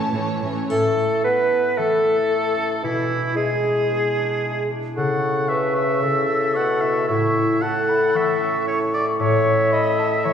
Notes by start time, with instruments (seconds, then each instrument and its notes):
Already playing: harp A2 A3 C#4 E4, viola section E3 A3, violin section C#4 C#5 A5
0.13 cello section A2, viola section E3 A3, violin section C#4 C#5
0.42 cello section A2, viola section E3 A3, violin section C#4 C#5
0.70 harp A2, bassoon A3, oboe A4, clarinet A4, flute A4, triangle
0.97 harp A3
1.24 bassoon B3, harp E4, flute B4, oboe B4, clarinet B4
1.51 harp C#4
1.77 harp E3, bassoon A3, flute A4, clarinet A4, oboe A4
2.04 harp A3
2.30 harp E4
2.56 harp C#4
2.83 harp B2, bassoon E3, clarinet E4, flute E4, oboe E4
3.10 harp D4
3.35 bassoon G#3, harp E4, clarinet G#4, oboe G#4, flute G#4
3.64 harp D4
3.90 harp B3
4.18 harp D4
4.44 harp E4
4.71 harp D4
4.96 harp C#3, bassoon C#3, clarinet A4, oboe F#5, flute C#6
5.23 harp C#4
5.49 harp A4, clarinet B4, oboe E5
5.76 harp E4, oboe E5
6.02 harp C#3, clarinet A4, flute E6
6.29 harp C#4, flute E6
6.54 bassoon B2, harp A4, oboe F#5, flute C#6
6.81 harp E4, oboe E5
7.07 harp A2, bassoon A2, clarinet E4, oboe E5, flute C#6
7.35 harp C#4
7.61 harp A4, clarinet A4, oboe F#5, flute A5
7.89 harp E4, flute B5
8.14 harp E3, oboe E5, flute C#6
8.41 harp C#4
8.67 harp A4, oboe C#5
8.94 harp E4, oboe D5
9.19 harp A2, bassoon A2, clarinet C#5, oboe E5, flute C#6
9.46 harp C#4
9.73 harp A4, clarinet D#5, flute B5
9.99 harp E4, flute A5
10.24 harp E3, clarinet C#5, flute C#6